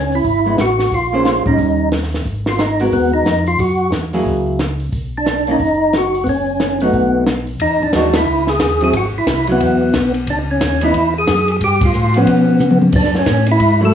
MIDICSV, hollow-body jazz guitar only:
0, 0, Header, 1, 2, 480
1, 0, Start_track
1, 0, Key_signature, 5, "major"
1, 0, Tempo, 333890
1, 1315, Time_signature, 4, 2, 24, 8
1, 10932, Key_signature, 4, "major"
1, 20040, End_track
2, 0, Start_track
2, 0, Title_t, "Hollow-body jazz guitar"
2, 0, Program_c, 0, 26
2, 661, Note_on_c, 0, 56, 56
2, 668, Note_on_c, 0, 59, 51
2, 676, Note_on_c, 0, 64, 54
2, 821, Note_off_c, 0, 56, 0
2, 825, Note_off_c, 0, 59, 0
2, 829, Note_off_c, 0, 64, 0
2, 1624, Note_on_c, 0, 58, 52
2, 1637, Note_on_c, 0, 61, 51
2, 1639, Note_on_c, 0, 68, 58
2, 1646, Note_on_c, 0, 72, 54
2, 2069, Note_off_c, 0, 58, 0
2, 2076, Note_off_c, 0, 61, 0
2, 2077, Note_off_c, 0, 68, 0
2, 2080, Note_off_c, 0, 72, 0
2, 2096, Note_on_c, 0, 55, 56
2, 2104, Note_on_c, 0, 61, 55
2, 2723, Note_off_c, 0, 55, 0
2, 2727, Note_off_c, 0, 61, 0
2, 4025, Note_on_c, 0, 56, 45
2, 4029, Note_on_c, 0, 59, 46
2, 4031, Note_on_c, 0, 66, 52
2, 4038, Note_on_c, 0, 70, 48
2, 4649, Note_off_c, 0, 56, 0
2, 4651, Note_off_c, 0, 59, 0
2, 4652, Note_off_c, 0, 66, 0
2, 4655, Note_off_c, 0, 70, 0
2, 5941, Note_on_c, 0, 54, 60
2, 5951, Note_on_c, 0, 58, 61
2, 5957, Note_on_c, 0, 64, 62
2, 5958, Note_on_c, 0, 68, 65
2, 6569, Note_off_c, 0, 54, 0
2, 6573, Note_off_c, 0, 58, 0
2, 6576, Note_off_c, 0, 64, 0
2, 6577, Note_off_c, 0, 68, 0
2, 7868, Note_on_c, 0, 51, 47
2, 7875, Note_on_c, 0, 58, 57
2, 7883, Note_on_c, 0, 61, 66
2, 8032, Note_off_c, 0, 51, 0
2, 8035, Note_off_c, 0, 58, 0
2, 8039, Note_off_c, 0, 61, 0
2, 9800, Note_on_c, 0, 54, 47
2, 9803, Note_on_c, 0, 57, 48
2, 9813, Note_on_c, 0, 63, 49
2, 10421, Note_off_c, 0, 54, 0
2, 10423, Note_off_c, 0, 57, 0
2, 10428, Note_off_c, 0, 63, 0
2, 11421, Note_on_c, 0, 52, 53
2, 11426, Note_on_c, 0, 56, 54
2, 11433, Note_on_c, 0, 66, 56
2, 11435, Note_on_c, 0, 63, 58
2, 11683, Note_off_c, 0, 52, 0
2, 11685, Note_off_c, 0, 56, 0
2, 11689, Note_off_c, 0, 66, 0
2, 11690, Note_off_c, 0, 63, 0
2, 12671, Note_on_c, 0, 54, 52
2, 12678, Note_on_c, 0, 60, 55
2, 12690, Note_on_c, 0, 64, 57
2, 12834, Note_off_c, 0, 54, 0
2, 12838, Note_off_c, 0, 60, 0
2, 12844, Note_off_c, 0, 64, 0
2, 13626, Note_on_c, 0, 54, 61
2, 13649, Note_on_c, 0, 64, 76
2, 14252, Note_off_c, 0, 54, 0
2, 14264, Note_off_c, 0, 64, 0
2, 15551, Note_on_c, 0, 52, 58
2, 15565, Note_on_c, 0, 59, 61
2, 15571, Note_on_c, 0, 63, 66
2, 15712, Note_off_c, 0, 52, 0
2, 15719, Note_off_c, 0, 59, 0
2, 15722, Note_off_c, 0, 63, 0
2, 17475, Note_on_c, 0, 53, 61
2, 17486, Note_on_c, 0, 59, 60
2, 17491, Note_on_c, 0, 61, 69
2, 18093, Note_off_c, 0, 53, 0
2, 18098, Note_off_c, 0, 59, 0
2, 18100, Note_off_c, 0, 61, 0
2, 19846, Note_on_c, 0, 54, 57
2, 19858, Note_on_c, 0, 57, 59
2, 19862, Note_on_c, 0, 64, 67
2, 20040, Note_off_c, 0, 54, 0
2, 20040, Note_off_c, 0, 57, 0
2, 20040, Note_off_c, 0, 64, 0
2, 20040, End_track
0, 0, End_of_file